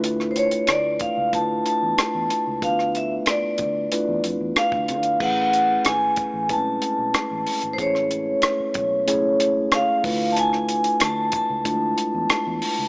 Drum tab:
CC |----------------|----------------|x---------------|----------------|
HH |x-xxx-x-x-x-x-x-|x-x-x-x-x-x-x-xx|--x-x-x-x-x-x-ox|x-x-x-x-x-x-x-o-|
SD |-r--r-------r---|-r--r-------r---|----r-------r---|-r--r-------r---|
BD |------o-o-------|o-----o------o--|o-----o-o-------|o-----o-------o-|

CC |----------------|
HH |x-xxx-x-x-x-x-o-|
SD |-r--r-------r---|
BD |------o-o-------|